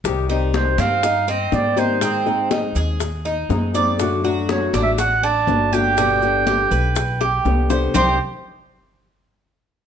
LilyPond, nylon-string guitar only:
\new Staff \with { instrumentName = "Nylon-string guitar" } { \time 4/4 \key c \minor \tempo 4 = 122 <c ees g c' g'>8 <ees g c' g'>4. r4 <ees g c' g'>8 <ees g c' g'>8 | <ees aes c' ees' aes'>8 <aes c' ees' aes'>4. r4 <aes c' ees' aes'>8 <aes c' ees' aes'>8 | <d fis a d' fis'>8 <fis a d' fis'>4. r4 <fis a d' fis'>8 <fis a d' fis'>8 | <b, d g b g'>8 <d g b g'>4. r4 <d g b g'>8 <d g b g'>8 |
<c ees g c' g'>8 r2. r8 | }